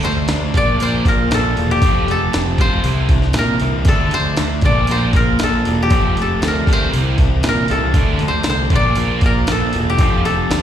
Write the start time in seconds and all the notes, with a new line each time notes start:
Already playing: D3 A4
0.03 D2 F3 A3 C5, open hi-hat
0.28 D2 F3 A3 D4, snare, open hi-hat
0.54 A#1 A#2 F3 A#3 D4 D5, kick, open hi-hat
0.79 A#1 F3 A#3 D4 C5, open hi-hat
1.05 A#1 F3 A#3 F4 A#4, kick, open hi-hat
1.31 A#1 F3 A#3 D4 A4, snare, open hi-hat
1.56 E1 F3 A#3 F4, open hi-hat
1.71 G4
1.82 F1 F3 A3 C4 F4, kick, open hi-hat
2.07 A3 C4 A4, open hi-hat
2.33 F1 A3 C4, snare, open hi-hat
2.58 A3 C4 F4 G4 C5, kick, open hi-hat
2.84 C2 C3 E3 C4 E4, open hi-hat
3.09 E3 C4 E4, kick, open hi-hat
3.22 snare
3.33 A#2 E3 C4 D4, snare, open hi-hat
3.39 A#4
3.60 C2 E3 C4 E4, open hi-hat
3.85 D2 D3 F3 A3 D4 A4, kick, open hi-hat
4.11 D2 F3 A3 C5, open hi-hat
4.37 D2 F3 A3 D4, snare, open hi-hat
4.61 A#1 A#2 F3 A#3 D4 D5, kick, open hi-hat
4.87 A#1 F3 A#3 D4 C5, open hi-hat
5.13 A#1 F3 A#3 F4 A#4, kick, open hi-hat
5.39 A#1 F3 A#3 D4, snare, open hi-hat
5.44 A4
5.65 E1 F3 A#3 F4, open hi-hat
5.83 G4
5.90 F1 F3 A3 C4, kick, open hi-hat
6.16 F3 A3, open hi-hat
6.22 A4
6.41 D2 F3 A3 C4, snare, open hi-hat
6.48 A#4
6.66 F3 A3 C4 G4, kick, open hi-hat
6.73 C5
6.92 C2 C3 E3 C4 E4, open hi-hat
7.18 E3 C4 E4, kick, open hi-hat
7.43 A#2 E3 C4 D4, snare, open hi-hat
7.49 A#4
7.68 C2 E3 C4 E4 A4, open hi-hat
7.93 D2 D3 F3 A3 D4, kick, open hi-hat
8.19 D2 F3 A3, open hi-hat
8.28 C5
8.43 C2 F3 A3 D4, snare, open hi-hat
8.50 C5
8.70 A#1 A#2 F3 A#3 D4, kick, open hi-hat
8.76 D5
8.95 A#1 F3 A#3 D4, open hi-hat
9.21 A#1 F3 A#3 F4, kick, open hi-hat
9.26 A#4
9.47 A#1 F3 A#3 D4, snare, open hi-hat
9.52 A4
9.73 E1 F3 A#3 F4, open hi-hat
9.90 G4
9.98 F1 F3 A3 C4 F4, kick, open hi-hat
10.25 A3 C4 A4, open hi-hat
10.50 D2 A3 C4, snare, open hi-hat